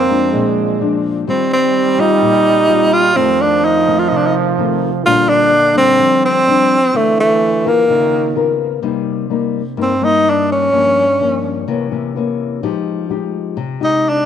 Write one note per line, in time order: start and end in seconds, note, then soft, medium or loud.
0.00 0.31 F2 medium
0.00 0.29 A#3 loud
0.00 0.53 C4 medium
0.10 0.77 F3 medium
0.10 0.77 G#3 medium
0.10 0.77 D4 medium
0.32 1.25 A#2 medium
0.32 0.99 G#3 loud
0.81 1.24 F3 medium
0.81 1.24 G#3 medium
0.81 1.24 D4 medium
1.27 2.20 D#3 medium
1.27 3.16 G3 loud
1.27 1.95 G3 medium
1.27 1.95 C4 medium
1.27 1.51 C4 medium
1.27 1.95 F4 medium
1.53 2.01 C4 medium
1.98 2.65 G3 medium
1.98 2.65 C4 medium
1.98 2.95 D#4 medium
1.98 2.66 F4 medium
2.22 3.14 A#2 medium
2.68 2.99 G3 medium
2.68 2.99 C4 medium
2.68 3.00 F4 medium
2.93 3.18 F4 loud
3.14 4.08 F2 medium
3.14 3.83 D#3 medium
3.14 5.07 F3 loud
3.14 3.83 A3 medium
3.14 3.42 C4 medium
3.14 3.84 C4 medium
3.41 3.66 D4 medium
3.64 4.00 D#4 medium
3.88 4.54 D#3 medium
3.88 4.55 A3 medium
3.88 4.55 C4 medium
3.99 4.10 F4 medium
4.08 5.03 C3 medium
4.08 4.18 D#4 medium
4.17 4.28 D4 medium
4.26 4.35 D#4 medium
4.58 4.88 D#3 medium
4.58 4.89 A3 medium
4.58 4.89 C4 medium
5.05 5.98 A#2 medium
5.05 6.67 D3 medium
5.05 5.52 G3 medium
5.05 5.53 C4 medium
5.05 5.53 D4 medium
5.05 5.30 F4 loud
5.29 5.76 D4 loud
5.75 6.43 G3 medium
5.75 6.43 C4 medium
5.75 6.21 C4 loud
5.75 6.43 D4 medium
5.99 6.92 F3 medium
6.25 6.98 C4 loud
6.47 6.77 G3 medium
6.47 6.77 C4 medium
6.47 6.78 D4 medium
6.94 7.86 D3 medium
6.94 7.85 E3 loud
6.94 7.41 A3 medium
6.94 7.19 A3 medium
6.94 7.41 C4 medium
7.20 7.69 A3 medium
7.65 8.37 A#3 medium
7.65 8.32 F4 medium
7.65 8.33 A#4 medium
7.89 8.82 C#3 medium
7.89 8.56 D#3 loud
8.36 8.80 B3 medium
8.36 8.80 F4 medium
8.36 8.80 A#4 medium
8.82 9.76 C3 medium
8.82 9.27 G3 medium
8.82 9.27 A#3 medium
8.82 9.27 D#4 medium
9.30 9.61 G3 soft
9.30 9.61 A#3 soft
9.30 9.61 D#4 medium
9.77 10.70 G2 medium
9.77 9.92 G3 soft
9.77 9.92 A#3 soft
9.77 9.92 D#4 medium
9.82 10.05 C4 medium
10.02 10.69 G3 medium
10.02 10.69 A#3 medium
10.02 10.70 D#4 medium
10.02 10.31 D#4 loud
10.30 10.52 D4 medium
10.52 11.65 C#4 loud
10.73 11.65 G2 medium
10.73 11.04 F3 medium
10.73 11.04 A#3 medium
10.73 11.04 C#4 medium
11.20 11.66 F3 medium
11.20 11.66 A#3 medium
11.20 11.67 C#4 medium
11.68 12.60 C3 medium
11.68 11.88 E3 medium
11.68 11.88 A#3 medium
11.68 11.88 C#4 medium
11.91 12.11 E3 medium
11.91 12.12 A#3 medium
11.91 12.12 C#4 medium
12.16 12.59 E3 medium
12.16 12.60 A#3 medium
12.16 12.60 C#4 medium
12.63 13.56 F3 medium
12.63 13.07 G#3 medium
12.63 13.07 D#4 medium
12.63 13.07 G4 medium
13.10 13.57 G#3 soft
13.10 13.57 D#4 soft
13.10 13.58 G4 medium
13.57 14.26 C3 medium
13.80 14.26 G#3 soft
13.80 14.26 D#4 medium
13.80 14.10 D#4 medium
13.80 14.26 G4 medium
14.09 14.26 D4 medium